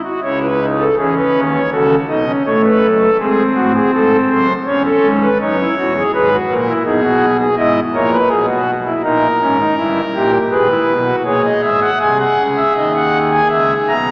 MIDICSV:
0, 0, Header, 1, 2, 480
1, 0, Start_track
1, 0, Key_signature, 4, "minor"
1, 0, Tempo, 740741
1, 154, Time_signature, 4, 2, 24, 8
1, 3031, Tempo, 730816
1, 6871, Tempo, 745342
1, 9182, End_track
2, 0, Start_track
2, 0, Title_t, "Pipe organ"
2, 0, Program_c, 0, 19
2, 26, Note_on_c, 0, 66, 57
2, 134, Note_off_c, 0, 66, 0
2, 152, Note_on_c, 0, 73, 80
2, 154, Note_on_c, 0, 37, 71
2, 154, Note_on_c, 0, 49, 65
2, 155, Note_on_c, 0, 64, 72
2, 257, Note_off_c, 0, 73, 0
2, 276, Note_on_c, 0, 71, 72
2, 305, Note_off_c, 0, 64, 0
2, 395, Note_on_c, 0, 63, 70
2, 425, Note_off_c, 0, 71, 0
2, 512, Note_on_c, 0, 69, 70
2, 545, Note_off_c, 0, 63, 0
2, 570, Note_off_c, 0, 37, 0
2, 570, Note_off_c, 0, 49, 0
2, 618, Note_off_c, 0, 69, 0
2, 634, Note_on_c, 0, 40, 69
2, 636, Note_on_c, 0, 52, 63
2, 636, Note_on_c, 0, 68, 75
2, 637, Note_on_c, 0, 61, 65
2, 740, Note_off_c, 0, 68, 0
2, 758, Note_on_c, 0, 71, 69
2, 784, Note_off_c, 0, 40, 0
2, 786, Note_off_c, 0, 52, 0
2, 882, Note_on_c, 0, 39, 81
2, 885, Note_on_c, 0, 51, 81
2, 907, Note_off_c, 0, 71, 0
2, 1003, Note_on_c, 0, 73, 91
2, 1029, Note_off_c, 0, 39, 0
2, 1031, Note_off_c, 0, 51, 0
2, 1049, Note_off_c, 0, 61, 0
2, 1103, Note_off_c, 0, 73, 0
2, 1115, Note_on_c, 0, 37, 65
2, 1115, Note_on_c, 0, 69, 76
2, 1116, Note_on_c, 0, 66, 66
2, 1119, Note_on_c, 0, 49, 73
2, 1263, Note_off_c, 0, 37, 0
2, 1263, Note_off_c, 0, 69, 0
2, 1264, Note_off_c, 0, 66, 0
2, 1266, Note_off_c, 0, 49, 0
2, 1354, Note_on_c, 0, 35, 65
2, 1354, Note_on_c, 0, 47, 64
2, 1354, Note_on_c, 0, 63, 72
2, 1355, Note_on_c, 0, 75, 79
2, 1457, Note_off_c, 0, 63, 0
2, 1470, Note_on_c, 0, 61, 66
2, 1502, Note_off_c, 0, 35, 0
2, 1502, Note_off_c, 0, 47, 0
2, 1503, Note_off_c, 0, 75, 0
2, 1575, Note_off_c, 0, 61, 0
2, 1592, Note_on_c, 0, 57, 73
2, 1593, Note_on_c, 0, 33, 67
2, 1594, Note_on_c, 0, 45, 66
2, 1595, Note_on_c, 0, 73, 79
2, 1698, Note_off_c, 0, 73, 0
2, 1710, Note_on_c, 0, 71, 79
2, 1742, Note_off_c, 0, 33, 0
2, 1742, Note_off_c, 0, 45, 0
2, 1832, Note_on_c, 0, 42, 70
2, 1835, Note_on_c, 0, 30, 68
2, 1860, Note_off_c, 0, 71, 0
2, 1952, Note_on_c, 0, 69, 81
2, 1981, Note_off_c, 0, 42, 0
2, 1983, Note_off_c, 0, 30, 0
2, 2004, Note_off_c, 0, 57, 0
2, 2056, Note_off_c, 0, 69, 0
2, 2071, Note_on_c, 0, 32, 77
2, 2072, Note_on_c, 0, 60, 74
2, 2072, Note_on_c, 0, 68, 84
2, 2074, Note_on_c, 0, 44, 73
2, 2221, Note_off_c, 0, 32, 0
2, 2221, Note_off_c, 0, 68, 0
2, 2223, Note_off_c, 0, 44, 0
2, 2304, Note_on_c, 0, 45, 67
2, 2305, Note_on_c, 0, 66, 85
2, 2306, Note_on_c, 0, 33, 65
2, 2412, Note_off_c, 0, 66, 0
2, 2426, Note_on_c, 0, 68, 89
2, 2456, Note_off_c, 0, 45, 0
2, 2457, Note_off_c, 0, 33, 0
2, 2532, Note_off_c, 0, 68, 0
2, 2547, Note_on_c, 0, 32, 74
2, 2547, Note_on_c, 0, 44, 69
2, 2550, Note_on_c, 0, 69, 79
2, 2697, Note_off_c, 0, 32, 0
2, 2697, Note_off_c, 0, 44, 0
2, 2700, Note_off_c, 0, 69, 0
2, 2785, Note_on_c, 0, 30, 83
2, 2785, Note_on_c, 0, 72, 93
2, 2786, Note_on_c, 0, 42, 80
2, 2896, Note_off_c, 0, 60, 0
2, 2934, Note_off_c, 0, 72, 0
2, 2935, Note_off_c, 0, 30, 0
2, 2936, Note_off_c, 0, 42, 0
2, 3020, Note_on_c, 0, 28, 77
2, 3021, Note_on_c, 0, 61, 78
2, 3022, Note_on_c, 0, 40, 78
2, 3022, Note_on_c, 0, 73, 79
2, 3129, Note_off_c, 0, 73, 0
2, 3141, Note_on_c, 0, 69, 88
2, 3171, Note_off_c, 0, 28, 0
2, 3173, Note_off_c, 0, 40, 0
2, 3265, Note_on_c, 0, 32, 81
2, 3265, Note_on_c, 0, 44, 73
2, 3292, Note_off_c, 0, 69, 0
2, 3384, Note_on_c, 0, 71, 97
2, 3414, Note_off_c, 0, 32, 0
2, 3414, Note_off_c, 0, 44, 0
2, 3436, Note_off_c, 0, 61, 0
2, 3489, Note_off_c, 0, 71, 0
2, 3511, Note_on_c, 0, 73, 83
2, 3512, Note_on_c, 0, 42, 77
2, 3512, Note_on_c, 0, 63, 77
2, 3513, Note_on_c, 0, 30, 78
2, 3613, Note_off_c, 0, 63, 0
2, 3633, Note_on_c, 0, 64, 68
2, 3659, Note_off_c, 0, 30, 0
2, 3659, Note_off_c, 0, 42, 0
2, 3733, Note_off_c, 0, 64, 0
2, 3751, Note_on_c, 0, 28, 80
2, 3754, Note_on_c, 0, 40, 76
2, 3755, Note_on_c, 0, 66, 81
2, 3854, Note_off_c, 0, 66, 0
2, 3874, Note_on_c, 0, 68, 78
2, 3897, Note_off_c, 0, 28, 0
2, 3899, Note_off_c, 0, 40, 0
2, 3919, Note_off_c, 0, 73, 0
2, 3973, Note_off_c, 0, 68, 0
2, 3989, Note_on_c, 0, 68, 94
2, 3991, Note_on_c, 0, 32, 88
2, 3991, Note_on_c, 0, 71, 78
2, 3993, Note_on_c, 0, 44, 81
2, 4089, Note_off_c, 0, 68, 0
2, 4106, Note_on_c, 0, 66, 93
2, 4136, Note_off_c, 0, 32, 0
2, 4136, Note_off_c, 0, 71, 0
2, 4137, Note_off_c, 0, 44, 0
2, 4228, Note_on_c, 0, 46, 72
2, 4230, Note_on_c, 0, 34, 84
2, 4231, Note_on_c, 0, 70, 85
2, 4252, Note_off_c, 0, 66, 0
2, 4342, Note_on_c, 0, 64, 87
2, 4373, Note_off_c, 0, 46, 0
2, 4374, Note_off_c, 0, 34, 0
2, 4375, Note_off_c, 0, 70, 0
2, 4443, Note_off_c, 0, 64, 0
2, 4458, Note_on_c, 0, 68, 77
2, 4459, Note_on_c, 0, 63, 83
2, 4461, Note_on_c, 0, 35, 73
2, 4461, Note_on_c, 0, 47, 67
2, 4561, Note_off_c, 0, 63, 0
2, 4577, Note_on_c, 0, 66, 78
2, 4725, Note_off_c, 0, 66, 0
2, 4798, Note_off_c, 0, 68, 0
2, 4812, Note_on_c, 0, 68, 108
2, 4870, Note_off_c, 0, 35, 0
2, 4871, Note_off_c, 0, 47, 0
2, 4916, Note_off_c, 0, 68, 0
2, 4930, Note_on_c, 0, 44, 76
2, 4930, Note_on_c, 0, 64, 91
2, 4932, Note_on_c, 0, 75, 80
2, 4934, Note_on_c, 0, 32, 77
2, 5080, Note_off_c, 0, 44, 0
2, 5081, Note_off_c, 0, 64, 0
2, 5082, Note_off_c, 0, 75, 0
2, 5083, Note_off_c, 0, 32, 0
2, 5174, Note_on_c, 0, 70, 93
2, 5175, Note_on_c, 0, 46, 72
2, 5177, Note_on_c, 0, 34, 83
2, 5179, Note_on_c, 0, 73, 82
2, 5281, Note_off_c, 0, 73, 0
2, 5297, Note_on_c, 0, 71, 78
2, 5324, Note_off_c, 0, 70, 0
2, 5325, Note_off_c, 0, 46, 0
2, 5326, Note_off_c, 0, 34, 0
2, 5400, Note_off_c, 0, 71, 0
2, 5403, Note_on_c, 0, 47, 77
2, 5403, Note_on_c, 0, 68, 91
2, 5405, Note_on_c, 0, 35, 74
2, 5514, Note_off_c, 0, 68, 0
2, 5525, Note_on_c, 0, 66, 87
2, 5679, Note_off_c, 0, 66, 0
2, 5776, Note_on_c, 0, 64, 78
2, 5826, Note_off_c, 0, 47, 0
2, 5827, Note_off_c, 0, 35, 0
2, 5882, Note_off_c, 0, 64, 0
2, 5893, Note_on_c, 0, 34, 72
2, 5893, Note_on_c, 0, 46, 75
2, 5894, Note_on_c, 0, 70, 71
2, 5895, Note_on_c, 0, 63, 92
2, 6046, Note_off_c, 0, 34, 0
2, 6046, Note_off_c, 0, 46, 0
2, 6048, Note_off_c, 0, 63, 0
2, 6137, Note_on_c, 0, 61, 81
2, 6138, Note_on_c, 0, 32, 63
2, 6139, Note_on_c, 0, 44, 68
2, 6244, Note_off_c, 0, 61, 0
2, 6253, Note_on_c, 0, 63, 80
2, 6291, Note_off_c, 0, 32, 0
2, 6291, Note_off_c, 0, 44, 0
2, 6363, Note_off_c, 0, 63, 0
2, 6378, Note_on_c, 0, 64, 84
2, 6379, Note_on_c, 0, 31, 67
2, 6379, Note_on_c, 0, 43, 73
2, 6531, Note_off_c, 0, 31, 0
2, 6531, Note_off_c, 0, 64, 0
2, 6532, Note_off_c, 0, 43, 0
2, 6622, Note_on_c, 0, 46, 85
2, 6623, Note_on_c, 0, 67, 99
2, 6624, Note_on_c, 0, 34, 84
2, 6730, Note_off_c, 0, 70, 0
2, 6774, Note_off_c, 0, 46, 0
2, 6775, Note_off_c, 0, 34, 0
2, 6775, Note_off_c, 0, 67, 0
2, 6860, Note_on_c, 0, 32, 60
2, 6861, Note_on_c, 0, 68, 83
2, 6861, Note_on_c, 0, 71, 75
2, 6863, Note_on_c, 0, 44, 60
2, 6967, Note_off_c, 0, 68, 0
2, 6980, Note_on_c, 0, 64, 82
2, 7011, Note_off_c, 0, 32, 0
2, 7013, Note_off_c, 0, 44, 0
2, 7100, Note_on_c, 0, 35, 67
2, 7100, Note_on_c, 0, 47, 65
2, 7131, Note_off_c, 0, 64, 0
2, 7209, Note_on_c, 0, 66, 78
2, 7251, Note_off_c, 0, 47, 0
2, 7252, Note_off_c, 0, 35, 0
2, 7276, Note_off_c, 0, 71, 0
2, 7321, Note_off_c, 0, 66, 0
2, 7334, Note_on_c, 0, 68, 78
2, 7335, Note_on_c, 0, 46, 66
2, 7337, Note_on_c, 0, 34, 68
2, 7337, Note_on_c, 0, 73, 70
2, 7446, Note_off_c, 0, 73, 0
2, 7463, Note_on_c, 0, 75, 62
2, 7489, Note_off_c, 0, 46, 0
2, 7491, Note_off_c, 0, 34, 0
2, 7570, Note_off_c, 0, 75, 0
2, 7579, Note_on_c, 0, 44, 69
2, 7579, Note_on_c, 0, 76, 72
2, 7581, Note_on_c, 0, 32, 69
2, 7689, Note_off_c, 0, 76, 0
2, 7699, Note_on_c, 0, 78, 61
2, 7733, Note_off_c, 0, 44, 0
2, 7735, Note_off_c, 0, 32, 0
2, 7758, Note_off_c, 0, 68, 0
2, 7810, Note_off_c, 0, 78, 0
2, 7822, Note_on_c, 0, 68, 58
2, 7823, Note_on_c, 0, 48, 59
2, 7824, Note_on_c, 0, 80, 73
2, 7825, Note_on_c, 0, 36, 58
2, 7933, Note_off_c, 0, 80, 0
2, 7946, Note_on_c, 0, 78, 60
2, 7977, Note_off_c, 0, 48, 0
2, 7978, Note_off_c, 0, 36, 0
2, 8069, Note_on_c, 0, 49, 59
2, 8071, Note_on_c, 0, 37, 54
2, 8099, Note_off_c, 0, 78, 0
2, 8187, Note_on_c, 0, 76, 62
2, 8221, Note_off_c, 0, 49, 0
2, 8222, Note_off_c, 0, 37, 0
2, 8295, Note_off_c, 0, 76, 0
2, 8312, Note_on_c, 0, 75, 56
2, 8313, Note_on_c, 0, 51, 58
2, 8315, Note_on_c, 0, 39, 58
2, 8417, Note_off_c, 0, 75, 0
2, 8434, Note_on_c, 0, 78, 53
2, 8583, Note_off_c, 0, 78, 0
2, 8667, Note_on_c, 0, 80, 70
2, 8724, Note_off_c, 0, 51, 0
2, 8726, Note_off_c, 0, 39, 0
2, 8773, Note_off_c, 0, 80, 0
2, 8785, Note_on_c, 0, 37, 55
2, 8786, Note_on_c, 0, 76, 66
2, 8788, Note_on_c, 0, 49, 61
2, 8935, Note_off_c, 0, 37, 0
2, 8936, Note_off_c, 0, 76, 0
2, 8938, Note_off_c, 0, 49, 0
2, 9032, Note_on_c, 0, 47, 61
2, 9032, Note_on_c, 0, 82, 78
2, 9033, Note_on_c, 0, 35, 64
2, 9063, Note_off_c, 0, 68, 0
2, 9180, Note_off_c, 0, 47, 0
2, 9181, Note_off_c, 0, 35, 0
2, 9181, Note_off_c, 0, 82, 0
2, 9182, End_track
0, 0, End_of_file